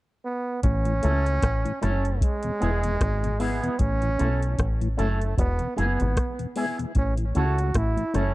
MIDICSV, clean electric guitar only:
0, 0, Header, 1, 3, 480
1, 0, Start_track
1, 0, Key_signature, 3, "major"
1, 0, Tempo, 790097
1, 386, Time_signature, 4, 2, 24, 8
1, 5068, End_track
2, 0, Start_track
2, 0, Title_t, "Clean electric guitar"
2, 0, Program_c, 0, 27
2, 625, Note_on_c, 0, 61, 68
2, 629, Note_on_c, 0, 64, 79
2, 634, Note_on_c, 0, 69, 85
2, 752, Note_off_c, 0, 61, 0
2, 754, Note_off_c, 0, 64, 0
2, 757, Note_off_c, 0, 69, 0
2, 1101, Note_on_c, 0, 61, 81
2, 1106, Note_on_c, 0, 64, 79
2, 1110, Note_on_c, 0, 69, 94
2, 1230, Note_off_c, 0, 61, 0
2, 1233, Note_off_c, 0, 64, 0
2, 1235, Note_off_c, 0, 69, 0
2, 1581, Note_on_c, 0, 59, 73
2, 1586, Note_on_c, 0, 64, 81
2, 1590, Note_on_c, 0, 68, 90
2, 1710, Note_off_c, 0, 59, 0
2, 1713, Note_off_c, 0, 64, 0
2, 1715, Note_off_c, 0, 68, 0
2, 2062, Note_on_c, 0, 59, 84
2, 2067, Note_on_c, 0, 64, 90
2, 2071, Note_on_c, 0, 68, 83
2, 2190, Note_off_c, 0, 68, 0
2, 2191, Note_off_c, 0, 59, 0
2, 2193, Note_off_c, 0, 64, 0
2, 2197, Note_on_c, 0, 68, 60
2, 2201, Note_on_c, 0, 64, 57
2, 2206, Note_on_c, 0, 59, 52
2, 2274, Note_off_c, 0, 68, 0
2, 2276, Note_off_c, 0, 64, 0
2, 2279, Note_off_c, 0, 59, 0
2, 2541, Note_on_c, 0, 61, 77
2, 2545, Note_on_c, 0, 64, 81
2, 2551, Note_on_c, 0, 69, 84
2, 2670, Note_off_c, 0, 61, 0
2, 2672, Note_off_c, 0, 64, 0
2, 2675, Note_off_c, 0, 69, 0
2, 3019, Note_on_c, 0, 61, 81
2, 3025, Note_on_c, 0, 64, 99
2, 3029, Note_on_c, 0, 69, 91
2, 3149, Note_off_c, 0, 61, 0
2, 3152, Note_off_c, 0, 64, 0
2, 3154, Note_off_c, 0, 69, 0
2, 3502, Note_on_c, 0, 59, 74
2, 3506, Note_on_c, 0, 64, 83
2, 3511, Note_on_c, 0, 68, 93
2, 3631, Note_off_c, 0, 59, 0
2, 3633, Note_off_c, 0, 64, 0
2, 3635, Note_off_c, 0, 68, 0
2, 3986, Note_on_c, 0, 59, 81
2, 3991, Note_on_c, 0, 64, 93
2, 3995, Note_on_c, 0, 68, 89
2, 4112, Note_off_c, 0, 59, 0
2, 4115, Note_off_c, 0, 64, 0
2, 4115, Note_off_c, 0, 68, 0
2, 4465, Note_on_c, 0, 61, 84
2, 4469, Note_on_c, 0, 64, 86
2, 4475, Note_on_c, 0, 69, 96
2, 4592, Note_off_c, 0, 61, 0
2, 4594, Note_off_c, 0, 64, 0
2, 4597, Note_off_c, 0, 69, 0
2, 4943, Note_on_c, 0, 61, 76
2, 4950, Note_on_c, 0, 64, 86
2, 4955, Note_on_c, 0, 69, 86
2, 5068, Note_off_c, 0, 61, 0
2, 5068, Note_off_c, 0, 64, 0
2, 5068, Note_off_c, 0, 69, 0
2, 5068, End_track
3, 0, Start_track
3, 0, Title_t, "Muted clean electric guitar strokes"
3, 4122, Note_on_c, 9, 29, 51
3, 4183, Note_off_c, 9, 29, 0
3, 5068, End_track
0, 0, End_of_file